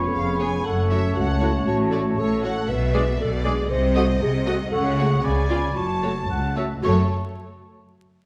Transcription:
Already playing: french horn section B3 C#4, oboe C#5, flute section B5
0.08 clarinet A4
0.14 double bass section F1, cello section F2, clarinet G#4, violin section F5
0.39 viola section B3 G#4, violin section C#5 G#5
0.65 double bass section F#1, cello section F#2, french horn section A3 C#4, clarinet A4, oboe C#5, violin section F#5, flute section A5
0.90 viola section A3 F#4, violin section C#5 E5
1.16 cello section C#2, double bass section C#2, clarinet F#4, violin section F#5
1.41 viola section A3 F#4, clarinet E4, violin section C#5
1.67 double bass section A1, cello section A2, clarinet F#4, violin section C#5
1.92 viola section A3 F#4, violin section C#5 D5
2.18 double bass section A1, cello section A2, clarinet A4, violin section C#5
2.43 viola section A3 F#4, violin section C#5 F#5
2.69 double bass section B1, cello section B2, clarinet B4, violin section E5
2.94 viola section G#3 G#4, french horn section G#3 D4, violin section D5, oboe D5, flute section G#5
3.19 double bass section B1, cello section B2, clarinet A4, violin section D5
3.45 viola section G#3 G#4, french horn section G#3 D4, clarinet G#4, violin section D5, oboe D5, flute section G#5
3.70 double bass section C2, cello section C3, clarinet C5, violin section D#5
3.95 viola section A3 F#4, french horn section A3 F#4, oboe D#5, violin section D#5, flute section F#5
4.21 double bass section C2, cello section C3, clarinet G#4
4.46 viola section A3 F#4, french horn section A3 F#4, clarinet F#4, violin section D#5, oboe D#5, flute section F#5
4.71 double bass section C#2, cello section C#3, clarinet A4, oboe C#5, violin section F#5, flute section F#5
4.98 viola section A3 F#4, french horn section A3 F#4, clarinet G#4, violin section C#5
5.23 double bass section C#2, cello section C#3, oboe D5, violin section G#5, flute section B5
5.50 viola section B3 F4, french horn section B3 F4, clarinet F4, violin section D5
5.75 double bass section F#1, cello section F#2, clarinet F#4, oboe C#5, flute section A5, violin section A5
6.03 french horn section A3 F#4, viola section A3 F#4, violin section C#5
6.29 double bass section C#2, cello section C#2, oboe F#5
6.56 viola section A3 F#4, french horn section A3 F#4, violin section C#5, oboe E5
6.82 double bass section F#1, cello section F#2, viola section A3, french horn section A3 F#4, clarinet F#4, violin section A4 C#5, oboe C#5, flute section A5

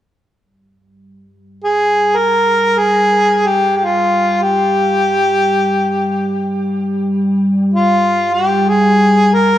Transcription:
0.42 ambient pad G3
1.64 harmonica G#4
2.16 harmonica A#4
2.78 harmonica G#4
3.46 harmonica G4
3.76 harmonica G4
3.85 harmonica F4
4.42 harmonica G4
7.74 harmonica F4
8.33 harmonica G4
8.68 harmonica G#4
9.34 harmonica A#4

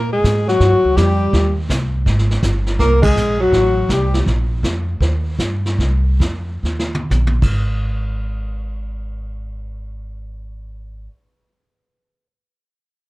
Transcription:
Already playing: upright bass A#2, alto saxophone A#4
0.12 tenor saxophone G#3, alto saxophone G#4
0.24 upright bass G#2, kick, snare, hi-hat pedal
0.47 tenor saxophone F#3, alto saxophone F#4, snare
0.60 upright bass G2, brush sweep, kick, snare
0.72 upright bass D#2
0.84 upright bass C#2
0.96 upright bass F2, tenor saxophone G3, alto saxophone G4, kick, snare, hi-hat pedal
1.33 upright bass D#2, brush sweep, kick, snare
1.69 upright bass C2, kick, snare, hi-hat pedal
2.06 upright bass G#1, brush sweep, kick, snare
2.18 snare
2.31 snare
2.43 upright bass G1, kick, snare, hi-hat pedal
2.66 snare
2.79 upright bass C2, tenor saxophone A#3, alto saxophone A#4, brush sweep, kick, snare
3.02 tenor saxophone G#3, alto saxophone G#4, kick, crash
3.15 upright bass A#1, hi-hat pedal
3.40 tenor saxophone F#3, alto saxophone F#4
3.52 upright bass A1, brush sweep, kick, snare
3.89 upright bass C2, tenor saxophone G3, alto saxophone G4, kick, snare, hi-hat pedal
4.14 snare
4.26 upright bass A#1, brush sweep, kick, snare
4.63 upright bass F2, kick, snare, hi-hat pedal
5.00 upright bass D#2, brush sweep, kick, snare
5.39 upright bass G2, kick, snare, hi-hat pedal
5.66 snare
5.78 upright bass C2, brush sweep, kick, snare
6.20 upright bass F2, kick, snare, hi-hat pedal
6.63 upright bass D#2, snare
6.79 snare
6.95 high tom
7.10 upright bass A#1, hi-hat pedal, high tom
7.27 high tom
7.42 upright bass G#1, kick, crash

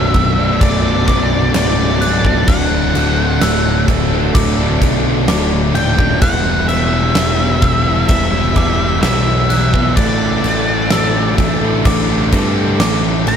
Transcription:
Already playing: picked electric bass B0, distorted electric guitar B1 F#2 B2 F#3 A3 D4, string section F#3 B4 A5 D6, lead electric guitar E5
0.14 distorted electric guitar B2 F#3 A3 D4, glockenspiel E6, muted distorted electric guitar stroke, kick, crash
0.37 distorted electric guitar B2 F#3 A3 D4
0.61 picked electric bass B0, lead electric guitar D5, kick, crash
0.84 distorted electric guitar B2 F#3 A3 D4
1.07 picked electric bass B0, distorted electric guitar B2 F#3 A3 D4, glockenspiel D6, kick, crash
1.54 picked electric bass C#1, distorted electric guitar B1 F#2 B2 F#3 A3 D4, lead electric guitar D5, snare, crash
1.77 distorted electric guitar B2 F#3 A3 D4
2.01 distorted electric guitar B2 F#3 A3 D4, glockenspiel F#6, muted distorted electric guitar stroke, crash
2.24 distorted electric guitar B2 F#3 A3 D4, kick
2.47 picked electric bass D1, distorted electric guitar D2 A2 D3 F#3 A3 D4, string section D5, lead electric guitar F#5, kick, crash
2.94 picked electric bass D1, distorted electric guitar D3 F#3 A3 D4, crash
3.41 picked electric bass D1, distorted electric guitar D2 A2 D3 F#3 A3 D4, glockenspiel E6, snare, crash
3.64 distorted electric guitar D3 F#3 A3 D4
3.87 picked electric bass D1, distorted electric guitar D3 F#3 A3 D4, muted distorted electric guitar stroke, kick, crash
4.11 distorted electric guitar D3 F#3 A3 D4
4.35 picked electric bass D1, glockenspiel D6, kick, crash
4.58 distorted electric guitar D3 F#3 A3 D4
4.81 picked electric bass B1, distorted electric guitar D3 F#3 A3 D4, kick, crash
5.28 picked electric bass D1, distorted electric guitar D2 A2 D3 F#3 A3 D4, glockenspiel D6, snare, crash
5.51 distorted electric guitar D3 F#3 A3 D4
5.74 picked electric bass D#1, distorted electric guitar D3 F#3 A3 D4, lead electric guitar G5, muted distorted electric guitar stroke, crash
5.98 distorted electric guitar D3 F#3 A3 D4, kick
6.21 picked electric bass E1, distorted electric guitar E2 B2 E3 G3 B3 E4, string section G4 E5 B5 E6, lead electric guitar F#5, glockenspiel F#6, kick, crash
6.68 distorted electric guitar E3 G3 B3 E4, lead electric guitar E5, crash
7.15 picked electric bass E1, distorted electric guitar E2 B2 E3 G3 B3 E4, snare, crash
7.39 distorted electric guitar E3 G3 B3 E4
7.62 distorted electric guitar E3 G3 B3 E4, glockenspiel E6, muted distorted electric guitar stroke, kick, crash
7.86 distorted electric guitar E3 G3 B3 E4
8.08 picked electric bass E1, lead electric guitar E5, kick, crash
8.33 distorted electric guitar E3 G3 B3 E4
8.56 picked electric bass E1, distorted electric guitar E3 G3 B3 E4, glockenspiel D6, kick, crash
9.02 picked electric bass B1, distorted electric guitar E2 B2 E3 G3 B3 E4, lead electric guitar E5, snare, crash
9.26 distorted electric guitar E3 G3 B3 E4
9.50 distorted electric guitar E3 G3 B3 E4, glockenspiel F#6, muted distorted electric guitar stroke, crash
9.73 distorted electric guitar E3 G3 B3 E4, kick
9.96 picked electric bass A1, distorted electric guitar A2 E3 A3 D4 E4 A4, string section A4 D6, lead electric guitar D5, kick, crash
10.43 picked electric bass A1, distorted electric guitar A3 D4 E4 A4, crash
10.90 picked electric bass A1, distorted electric guitar A2 E3 A3 D4 E4 A4, glockenspiel E6, snare, crash
11.15 distorted electric guitar A3 D4 E4 A4
11.38 picked electric bass A1, distorted electric guitar A3 D4 E4 A4, muted distorted electric guitar stroke, kick, crash
11.62 distorted electric guitar A3 D4 E4 A4
11.85 picked electric bass A1, glockenspiel D6, kick, crash
12.09 distorted electric guitar A3 D4 E4 A4
12.32 picked electric bass G2, distorted electric guitar A3 D4 E4 A4, kick, crash
12.79 picked electric bass A1, distorted electric guitar A2 E3 A3 D4 E4 A4, glockenspiel D6, snare, crash
13.03 distorted electric guitar A3 D4 E4 A4
13.27 picked electric bass A1, distorted electric guitar A3 D4 E4 A4, lead electric guitar B5, muted distorted electric guitar stroke, crash

